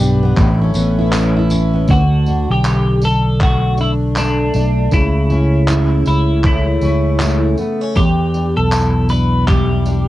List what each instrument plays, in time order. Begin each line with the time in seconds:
Already playing: steel-string acoustic guitar G2 B3 G4, harmonium G4 B4 D5 B5
0.00 fingered electric bass B1, steel-string acoustic guitar D4
0.23 steel-string acoustic guitar B3
0.36 fingered electric bass A1, steel-string acoustic guitar A2, harmonium A4 C#5 E5, kick, clap, tambourine
0.61 steel-string acoustic guitar C#4
0.74 fingered electric bass A1, steel-string acoustic guitar B3, tambourine
0.98 steel-string acoustic guitar E4
1.12 steel-string acoustic guitar C#4, clap, tambourine
1.37 steel-string acoustic guitar E4
1.50 steel-string acoustic guitar C#4, tambourine
1.74 steel-string acoustic guitar B3
1.88 fingered electric bass D2, steel-string acoustic guitar D3, clean electric guitar F#4, kick, tambourine
2.26 steel-string acoustic guitar D4, tambourine
2.49 fingered electric bass B1, clean electric guitar G4
2.64 clap, tambourine
3.02 steel-string acoustic guitar D4, clean electric guitar A4, tambourine
3.41 steel-string acoustic guitar A3, clean electric guitar F#4, kick, clap
3.78 steel-string acoustic guitar D4, clean electric guitar E4, tambourine
4.16 steel-string acoustic guitar A3, clean electric guitar D4, clap, tambourine
4.54 fingered electric bass B1, steel-string acoustic guitar D4, tambourine
4.91 fingered electric bass C#2, steel-string acoustic guitar C#3, clean electric guitar E4, kick, tambourine
5.30 steel-string acoustic guitar C#4, tambourine
5.68 steel-string acoustic guitar E4, clap, tambourine
6.06 fingered electric bass C#2, steel-string acoustic guitar C#4, clean electric guitar E4, tambourine
6.44 steel-string acoustic guitar A3, clean electric guitar E4, kick, clap
6.81 fingered electric bass C#2, steel-string acoustic guitar C#4, tambourine
7.19 steel-string acoustic guitar A3, clap, tambourine
7.57 steel-string acoustic guitar B3, tambourine
7.81 steel-string acoustic guitar C#4
7.96 fingered electric bass E2, steel-string acoustic guitar E2, clean electric guitar G4, kick, tambourine
8.34 steel-string acoustic guitar D4, tambourine
8.57 fingered electric bass B1, clean electric guitar A4
8.72 steel-string acoustic guitar E4, clap, tambourine
9.09 steel-string acoustic guitar D4, clean electric guitar B4, tambourine
9.47 steel-string acoustic guitar G3, clean electric guitar G4, kick, clap, tambourine
9.85 steel-string acoustic guitar D4, tambourine